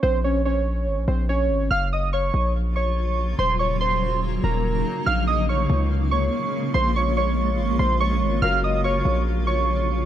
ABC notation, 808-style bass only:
X:1
M:4/4
L:1/16
Q:1/4=143
K:Bbm
V:1 name="808-style bass" clef=bass
B,,,8 A,,, B,,, B,,,4 A,,,2 | G,,,6 B,,,8- B,,,2 | E,,,8- E,,,2 E,,,4 z2 | B,,,6 D,,6 z4 |
B,,,8 A,,, B,,, B,,,4 A,,,2 | G,,,6 B,,,8- B,,,2 |]